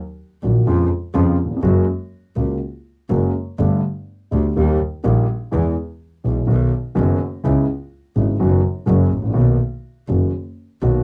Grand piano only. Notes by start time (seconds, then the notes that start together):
0.43 A#1 A#2 D#3 F#3 A#3 F#4
0.66 F2 C#3 F3 G#3 B3 F4
1.14 F2 C#3 F3 G#3 B3 F4
1.45 D#2
1.51 E2
1.56 F2
1.62 F#2 C#3 F#3 G#3 A#3 F#4
2.36 C#2 C#3 G#3 A#3 F#4
3.09 F#2 C#3 F#3 G#3 A#3 F#4
3.58 G1 G2 D3 A3 B3 G4
4.31 D2 D3 A3 B3 G4
4.56 D#2 D#3 G3 A#3 G4
5.04 A#1 A#2 D#3 G3 A#3 G4
5.51 E2 E3 G#3 B3 G#4
6.24 B1 B2 E3 G#3 B3 G#4
6.47 B1 B2 D#3 F#3 B3 F#4
6.95 F#1 F#2 D#3 F#3 B3 F#4
7.44 C#2 C#3 G#3 B3 E4
8.16 G#1 G#2 C#3 G#3 B3 E4
8.40 F#2 D#3 F#3 B3 F#4
8.86 F#2 C#3 F#3 G#3 A#3 F#4
9.17 G#1
9.23 A1
9.30 A#1 D#3 A#3
9.34 B1 B2 B3 F#4
10.08 F#1 F#2 D#3 A#3 B3 F#4
10.82 B1 B2 D#3 A#3 B3 F#4